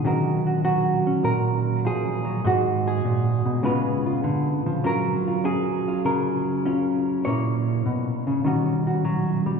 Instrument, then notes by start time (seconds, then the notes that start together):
hollow-body jazz guitar
0.05 D#3 F#3 C#4 F#4 A#4
0.47 F#4
0.65 F#3 F#4
1.07 C#4
1.23 A#2 A#4
1.85 F3 G#4
2.25 F#3
2.44 G#2 G#3 F#4
2.87 G#4
3.05 A#2
3.45 B2
3.63 C#3 G#3 B3 F4 B4
4.06 F4
4.24 D3
4.66 F3
4.84 F#3 C#4 F4 A#4
5.28 F4
5.44 C#4 G#4
5.88 F4
6.05 C#3 A#4
6.66 C#4 F4
7.25 A#2 A#3 C#4 E4 C#5
7.86 B2
8.27 C#3
8.44 D#3 G3 C#4 F#4
8.87 F#4
9.05 F#3
9.46 G3